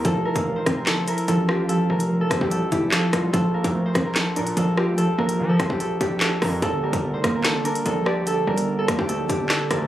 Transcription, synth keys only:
\new Staff \with { instrumentName = "Synth keys" } { \clef bass \time 4/4 \key f \major \tempo 4 = 146 f8 e8 f8 c'8 f8 e'8 f8 f'8 | f4 f8 c'8 f8 e'8 f8 f'8 | f8 bes8 f8 c'8 f8 d'8 f8 f'8 | f8 bes8 f8 c'8 f8 d'8 f8 f'8 |
d8 g8 d8 bes8 d8 d'8 d8 d''8 | d8 g8 d8 bes8 d8 d'8 d8 d''8 | }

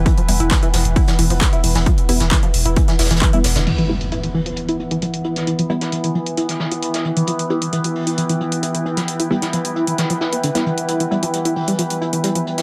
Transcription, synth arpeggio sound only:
\new Staff \with { instrumentName = "Synth arpeggio sound" } { \clef bass \time 4/4 \key e \minor \tempo 4 = 133 e16 f16 r16 e'16 e16 e16 f16 r16 e'16 e16 e16 f16 r16 e'16 e16 e16 | f16 r16 e'16 e16 e16 f16 r16 e'16 e16 e16 e'16 e16 e16 e'16 r16 d16 | e16 e16 f16 r16 e'16 e16 e16 f16 r16 e'16 e16 e16 f16 r16 e'16 e16 | e16 f16 r16 e'16 e16 e16 f16 r16 e'16 e16 e16 f16 r16 e'16 e16 e16 |
f16 r16 e'16 e16 e16 f16 r16 e'16 e16 e16 f16 r16 e'16 e16 e16 f16 | r16 e'16 e16 e16 f16 r16 e'16 e16 e16 f16 e'16 b16 d16 r16 e16 r16 | e'16 e16 g16 f16 r16 e'16 e16 g16 f16 r16 e'16 e16 g16 f16 r16 e'16 | }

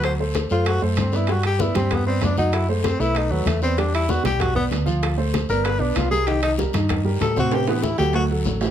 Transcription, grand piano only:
\new Staff \with { instrumentName = "Grand piano" } { \time 4/4 \key g \major \tempo 4 = 192 <fis fis' fis''>8 <a a' c''>4 <a a' c''>4 <a a' c''>4 <b b' d''>8 | <g g' g''>4 <b b' d''>8 <g g' g''>4 <b b' d''>4 <fis fis' fis''>8~ | <fis fis' fis''>8 <a a' c''>4 <a a' b'>4 <a a' b'>4 <b b' d''>8 | <g g' g''>4 <b b' d''>8 <g g' g''>4 <b b' d''>4 <f f' f''>8~ |
<f f' f''>8 <a a' c''>4 <b b' d''>4 <b b' d''>4 <g g' bes'>8 | <ees ees' ees''>4 <g g' bes'>8 <ees ees' ees''>4 <g g' bes'>4 <c c' c''>8~ | <c c' c''>8 <e e' g'>4 <fis fis' a'>4 <fis fis' a'>4 <e e' g'>8 | }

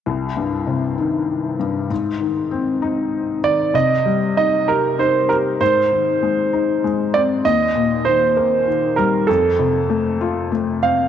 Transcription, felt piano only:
\new Staff \with { instrumentName = "Felt piano" } { \clef bass \time 6/8 \key c \minor \tempo 4. = 65 c,8 g,8 c8 ees4 g,8 | aes,8 ees8 c'8 ees'4 ees8 | c8 g8 ees'8 g'8 ees'8 g'8 | aes,8 ees8 aes8 ees'8 aes8 c'8 |
ees,8 bes,8 ees8 bes8 ees8 g8 | f,8 c8 a8 f'8 a8 c'8 | }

